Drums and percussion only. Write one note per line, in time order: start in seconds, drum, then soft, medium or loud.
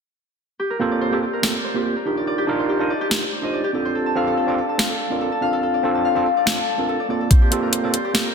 1.43 finger snap medium
1.43 snare loud
3.11 finger snap medium
3.11 snare loud
4.79 finger snap medium
4.79 snare loud
6.47 finger snap medium
6.47 snare loud
7.31 kick loud
7.31 closed hi-hat medium
7.52 closed hi-hat medium
7.73 closed hi-hat medium
7.94 closed hi-hat medium
8.15 finger snap medium
8.15 snare loud
8.15 closed hi-hat medium